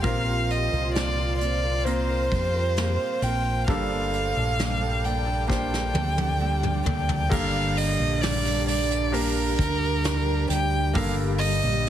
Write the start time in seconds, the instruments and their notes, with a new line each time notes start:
Already playing: ambient pad C6
0.02 fingered electric bass A#1, grand piano A#2 A#3 C4 F4 A#4, french horn section F3 F4, nylon-string guitar A#3 C4 F4 A#4, ambient pad C5 F5, violin F5, kick, closed hi-hat
0.26 nylon-string guitar C4 F4 A#4
0.50 violin D#5, closed hi-hat
0.72 fingered electric bass C2, nylon-string guitar C4 F4 A#4, closed hi-hat
0.95 nylon-string guitar A#3 C4 F4 A#4, violin D5, snare, closed hi-hat
1.17 nylon-string guitar C4 F4 A#4
1.40 nylon-string guitar A#3 C4 F4, violin D5, closed hi-hat
1.44 nylon-string guitar A#4
1.63 nylon-string guitar C4 F4 A#4
1.84 grand piano A#3 C4 F4 A#4, violin C5, closed hi-hat
2.09 nylon-string guitar C4 F4 A#4
2.31 fingered electric bass F2, french horn section G3 G4, nylon-string guitar A#3 C4 F4, kick, closed hi-hat
2.35 nylon-string guitar A#4
2.54 nylon-string guitar C4 F4 A#4
2.77 nylon-string guitar A#3 C4 F4 A#4, snare, closed hi-hat
3.22 fingered electric bass A#1, nylon-string guitar A#3 C4 F4, violin G5, closed hi-hat
3.26 nylon-string guitar A#4
3.67 fingered electric bass G1, nylon-string guitar G2 D3 G3 A#3 D4 A4, grand piano G2 A#3 D4 G4 A4, french horn section A3 A4, ambient pad D5 G5 A5, violin F5, kick, closed hi-hat
3.90 nylon-string guitar G3 A#3 D4 A4
4.13 closed hi-hat
4.36 fingered electric bass A#1, nylon-string guitar G3 A#3 D4 A4
4.59 nylon-string guitar G2 D3 G3 A#3 D4 A4, snare, closed hi-hat
4.81 nylon-string guitar G3 A#3 D4 A4
5.03 nylon-string guitar G3 A#3 D4 A4, violin G5, closed hi-hat
5.26 nylon-string guitar G3 A#3 D4 A4
5.47 grand piano A#3 D4 G4 C5, kick, snare
5.51 violin G5
5.71 nylon-string guitar G3 A#3 D4 A4, snare
5.94 fingered electric bass D2, nylon-string guitar G3 A#3 D4 A4, french horn section G3 G4, high tom
6.17 nylon-string guitar G3 A#3 D4 A4, high tom
6.39 nylon-string guitar G2 D3 G3 A#3 D4 A4
6.63 mid tom
6.83 fingered electric bass D2, nylon-string guitar G3 A#3 D4 A4, floor tom
6.88 violin G5
7.09 floor tom
7.29 fingered electric bass G1, grand piano G2 D3 A#3 G4 A4 A#4, french horn section D3 D4, ambient pad G3 G4, violin F5, kick, crash
7.77 violin D#5, hi-hat pedal, open hi-hat
8.00 fingered electric bass A#1, open hi-hat
8.22 violin D5, snare, hi-hat pedal, open hi-hat
8.45 hi-hat pedal, open hi-hat
8.68 violin D5, hi-hat pedal, open hi-hat
8.91 hi-hat pedal
9.12 grand piano A#3 D4 G4 A#4, violin A#4, hi-hat pedal, open hi-hat
9.59 fingered electric bass D2, kick, hi-hat pedal, open hi-hat
10.04 snare, hi-hat pedal, open hi-hat
10.49 fingered electric bass D2, violin G5, hi-hat pedal, open hi-hat
10.93 fingered electric bass G1, grand piano G2 D3 A#3 G4 A4 A#4, violin F5, kick, hi-hat pedal, open hi-hat
11.39 violin D#5, hi-hat pedal, open hi-hat
11.63 fingered electric bass A#1